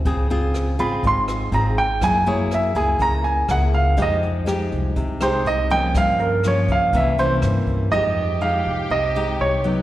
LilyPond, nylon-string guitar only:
\new Staff \with { instrumentName = "Nylon-string guitar" } { \time 4/4 \key f \minor \tempo 4 = 122 << { <c' f' aes'>8 <c' f' aes'>4 <c' f' aes'>4. <c' f' aes'>8 r8 | <bes fes' aes'>8 <bes fes' aes'>4 <bes fes' aes'>4. <bes fes' aes'>4 | <aes ees' g'>4 <aes ees' g'>4. <aes ees' g'>4 <f bes des'>8~ | <f bes des'>4 <f bes des'>4 <e bes des'>8 <e bes des'>4. |
<aes ees' g'>8 r8 <aes ees' g'>4 r8 <aes ees' g'>4 <ges b ees'>8 | } \\ { des2 aes,2 | ges2 des2 | f2 c2 | g,2 c2 |
f2 c2 | } >> }